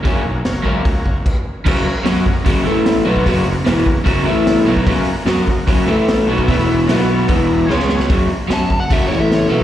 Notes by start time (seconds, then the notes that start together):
0.04 F#1 F#2 C#3 F#3 A#3 C#4 F#4 A#4 C#5, kick, open hi-hat
0.25 B1
0.44 F#1 F#4 A#4 C#5, snare, open hi-hat
0.63 C#2 F#2 C#3 F#3 A#3 C#4, kick
0.84 C#2 F#4 A#4 C#5, kick, open hi-hat
1.05 F#1, kick
1.26 kick, crash
1.65 F#1 F#2 C#3 F#3 F#4 A#4 C#5, kick, crash
1.86 muted overdriven electric guitar stroke, muted fingered electric bass stroke
2.02 F#3 F#4 A#4 C#5, snare, open hi-hat
2.06 F#2 C#4 F#4
2.26 F#1 F#2 C#3, kick
2.45 F#1 F#2 C#3 F#3 F#4 A#4 C#5, kick, open hi-hat
2.63 A1 A2 E3 A3 E4 A4 E5
2.86 snare, open hi-hat
3.05 B1 B2 F#3 B3 F#4 A#4 C#5
3.16 kick
3.25 F#1 F#2 C#3 F#3, kick, open hi-hat
3.45 F#1 F#2 C#3
3.65 E1 E2 B2 E3 F#4 A#4 C#5, snare, open hi-hat
3.86 F#1 F#2 C#3, kick
4.04 F#1 F#2 C#3 F#3 F#4 A#4 C#5, kick, open hi-hat
4.24 A1 A2 E3 A3 E4 A4
4.29 E5
4.47 snare, open hi-hat
4.64 B1 B2 F#3 B3 F#4 A#4 C#5
4.76 kick
4.87 F#1 F#2 C#3 F#3, kick, open hi-hat
5.06 muted fingered electric bass stroke, muted overdriven electric guitar stroke
5.25 F#2 F#3 C#4 F#4 A#4 D#5, snare, open hi-hat
5.47 F#1 F#2 C#3, kick
5.64 F#1 F#2 C#3 F#4 A#4 C#5, kick, open hi-hat
5.68 F#3
5.84 A2 E4 A4 E5
5.88 A1 E3 A3
6.08 snare, open hi-hat
6.26 B1 B2 F#3 F#4 A#4 C#5
6.31 B3
6.38 kick
6.47 E1 E2 B2 E4 B4 E5, kick, open hi-hat
6.51 E3
6.87 B1 B2 F#3 B3 F#4 B4 F#5, snare, open hi-hat
7.28 E1 E2 B2 E3 E4 B4 E5, kick, open hi-hat
7.50 A#5
7.66 C#2 C#3 C#4 G#4 C#5 G#5
7.70 G#3 C#4, snare
7.80 snare
7.89 snare
8.00 snare
8.09 F#1 F#2 C#3 F#3, kick, open hi-hat
8.30 muted overdriven electric guitar stroke, muted fingered electric bass stroke
8.48 F#2 F#3 C#4 F#4, snare, open hi-hat
8.53 A5
8.70 F#1 F#2 C#3, kick
8.80 F#5
8.90 F#1 F#2 C#3 F#3 E5, kick, open hi-hat
9.07 A1 A2 E3 C#5
9.12 A3
9.20 E5
9.32 C#5, snare, open hi-hat
9.49 B1 B2 F#3 B3 A4